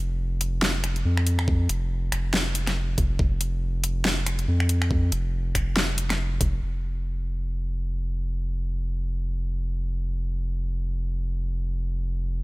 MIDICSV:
0, 0, Header, 1, 3, 480
1, 0, Start_track
1, 0, Tempo, 428571
1, 1656, Time_signature, 4, 2, 24, 8
1, 13925, End_track
2, 0, Start_track
2, 0, Title_t, "Sub bass"
2, 0, Program_c, 0, 38
2, 0, Note_on_c, 0, 29, 95
2, 1160, Note_off_c, 0, 29, 0
2, 1175, Note_on_c, 0, 41, 95
2, 1880, Note_off_c, 0, 41, 0
2, 1896, Note_on_c, 0, 29, 93
2, 2360, Note_off_c, 0, 29, 0
2, 2377, Note_on_c, 0, 29, 93
2, 3321, Note_off_c, 0, 29, 0
2, 3337, Note_on_c, 0, 29, 97
2, 3560, Note_off_c, 0, 29, 0
2, 3576, Note_on_c, 0, 29, 94
2, 5000, Note_off_c, 0, 29, 0
2, 5017, Note_on_c, 0, 41, 98
2, 5720, Note_off_c, 0, 41, 0
2, 5736, Note_on_c, 0, 29, 94
2, 6200, Note_off_c, 0, 29, 0
2, 6216, Note_on_c, 0, 29, 94
2, 7160, Note_off_c, 0, 29, 0
2, 7176, Note_on_c, 0, 29, 96
2, 7400, Note_off_c, 0, 29, 0
2, 7418, Note_on_c, 0, 29, 83
2, 13925, Note_off_c, 0, 29, 0
2, 13925, End_track
3, 0, Start_track
3, 0, Title_t, "Drums"
3, 457, Note_on_c, 9, 42, 72
3, 569, Note_off_c, 9, 42, 0
3, 696, Note_on_c, 9, 38, 116
3, 808, Note_off_c, 9, 38, 0
3, 938, Note_on_c, 9, 26, 51
3, 938, Note_on_c, 9, 42, 73
3, 1050, Note_off_c, 9, 26, 0
3, 1050, Note_off_c, 9, 42, 0
3, 1075, Note_on_c, 9, 42, 35
3, 1187, Note_off_c, 9, 42, 0
3, 1316, Note_on_c, 9, 26, 53
3, 1417, Note_on_c, 9, 42, 68
3, 1428, Note_off_c, 9, 26, 0
3, 1529, Note_off_c, 9, 42, 0
3, 1555, Note_on_c, 9, 26, 79
3, 1656, Note_on_c, 9, 36, 115
3, 1667, Note_off_c, 9, 26, 0
3, 1768, Note_off_c, 9, 36, 0
3, 1897, Note_on_c, 9, 42, 75
3, 2009, Note_off_c, 9, 42, 0
3, 2377, Note_on_c, 9, 26, 59
3, 2377, Note_on_c, 9, 42, 76
3, 2489, Note_off_c, 9, 26, 0
3, 2489, Note_off_c, 9, 42, 0
3, 2617, Note_on_c, 9, 38, 106
3, 2729, Note_off_c, 9, 38, 0
3, 2856, Note_on_c, 9, 42, 76
3, 2968, Note_off_c, 9, 42, 0
3, 2995, Note_on_c, 9, 26, 60
3, 2995, Note_on_c, 9, 38, 34
3, 2995, Note_on_c, 9, 42, 37
3, 3107, Note_off_c, 9, 26, 0
3, 3107, Note_off_c, 9, 38, 0
3, 3107, Note_off_c, 9, 42, 0
3, 3336, Note_on_c, 9, 36, 98
3, 3336, Note_on_c, 9, 42, 70
3, 3448, Note_off_c, 9, 36, 0
3, 3448, Note_off_c, 9, 42, 0
3, 3576, Note_on_c, 9, 36, 111
3, 3688, Note_off_c, 9, 36, 0
3, 3816, Note_on_c, 9, 42, 77
3, 3928, Note_off_c, 9, 42, 0
3, 4296, Note_on_c, 9, 42, 81
3, 4408, Note_off_c, 9, 42, 0
3, 4536, Note_on_c, 9, 38, 106
3, 4648, Note_off_c, 9, 38, 0
3, 4777, Note_on_c, 9, 26, 49
3, 4777, Note_on_c, 9, 42, 78
3, 4889, Note_off_c, 9, 26, 0
3, 4889, Note_off_c, 9, 42, 0
3, 4915, Note_on_c, 9, 42, 38
3, 5027, Note_off_c, 9, 42, 0
3, 5155, Note_on_c, 9, 26, 50
3, 5255, Note_on_c, 9, 42, 74
3, 5267, Note_off_c, 9, 26, 0
3, 5367, Note_off_c, 9, 42, 0
3, 5395, Note_on_c, 9, 26, 76
3, 5496, Note_on_c, 9, 36, 117
3, 5507, Note_off_c, 9, 26, 0
3, 5608, Note_off_c, 9, 36, 0
3, 5736, Note_on_c, 9, 42, 83
3, 5848, Note_off_c, 9, 42, 0
3, 6216, Note_on_c, 9, 36, 60
3, 6217, Note_on_c, 9, 26, 56
3, 6217, Note_on_c, 9, 42, 78
3, 6328, Note_off_c, 9, 36, 0
3, 6329, Note_off_c, 9, 26, 0
3, 6329, Note_off_c, 9, 42, 0
3, 6457, Note_on_c, 9, 38, 106
3, 6569, Note_off_c, 9, 38, 0
3, 6696, Note_on_c, 9, 42, 79
3, 6808, Note_off_c, 9, 42, 0
3, 6835, Note_on_c, 9, 26, 60
3, 6835, Note_on_c, 9, 38, 36
3, 6835, Note_on_c, 9, 42, 37
3, 6947, Note_off_c, 9, 26, 0
3, 6947, Note_off_c, 9, 38, 0
3, 6947, Note_off_c, 9, 42, 0
3, 7176, Note_on_c, 9, 36, 100
3, 7177, Note_on_c, 9, 42, 79
3, 7288, Note_off_c, 9, 36, 0
3, 7289, Note_off_c, 9, 42, 0
3, 13925, End_track
0, 0, End_of_file